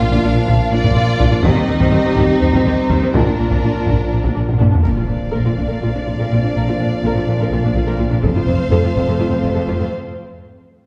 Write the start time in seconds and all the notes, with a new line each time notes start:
Already playing: F3 A#3 F4 F5
0.01 A#1 D4
0.11 A#2 D4, taiko
0.23 A#1 A#2 D4
0.34 A#2 D4
0.46 A#1 A#2 D4, taiko
0.70 A#1 A#2 D4 F4 D5
0.83 A#2 D4, taiko
0.94 A#2 D4
0.98 A#1
1.19 A#1 A#2 D4, taiko
1.31 A#2 D4
1.43 D#2 D#3 G3 C4 D#4 G4 D#5, taiko
1.55 D#3 C4
1.68 D#2 D#3 C4
1.79 D#3 C4, taiko
1.91 D#2 D#3 C4
2.04 D#3 C4
2.16 D#2 D#3 C4, taiko
2.40 D#2 D#3 C4 C5
2.53 D#3 C4, taiko
2.65 D#2 D#3 C4
2.89 D#2 D#3 C4, taiko
3.01 D#3 C4
3.13 A#1 A#2 F3 D4 F4 A#4, taiko
3.26 A#2 D4
3.39 A#1 A#2 D4
3.51 A#2 D4, taiko
3.63 A#1 A#2 D4
3.76 A#2 D4
3.87 A#1 A#2 D4, taiko
4.12 A#1 A#2 D4
4.23 A#2 D4, taiko
4.34 A#1 A#2 D4
4.49 taiko low-mid
4.58 A#1 A#2 D4, taiko low-mid
4.71 A#2 D4, taiko low
4.82 A#2 F3 A#3 D4 A#4 D5 F5, impact
4.86 A#1 F2, taiko
4.96 A#2 F4
5.06 A#2 D4
5.11 A#1
5.32 A#1 A#2 A#4
5.45 A#2 F4
5.57 A#1 A#2 D4, taiko
5.68 A#2 A#4
5.81 A#1 A#2 F4
5.94 A#2 D4
6.06 A#1 A#2 F4
6.19 A#2 A#4
6.31 A#1 A#2 F4
6.44 A#2 D4
6.55 A#1 A#2 A#4
6.68 A#2 F4
6.79 A#1 A#2 D4
7.03 A#1 A#2 A#4
7.15 A#2 F4
7.28 A#1 A#2 D4
7.40 A#2 A#4
7.51 A#1 A#2 F4
7.64 A#2 D4
7.75 A#1 A#2 F4
7.87 A#2 A#4
7.98 A#1 A#2 F4
8.10 A#2 D4
8.22 F1 F2 F3 A3 C4 A4 C5 F5, taiko
8.35 F2 F4
8.46 F1 F2 C4
8.70 F1 F2 A4
8.83 F2 F4
8.95 F1 F2 C4
9.07 F2 A4
9.19 F1 F2 F4
9.30 F2 C4
9.43 F1 F2 F4
9.54 F2 A4
9.68 F1 F2 F4
9.79 F2 C4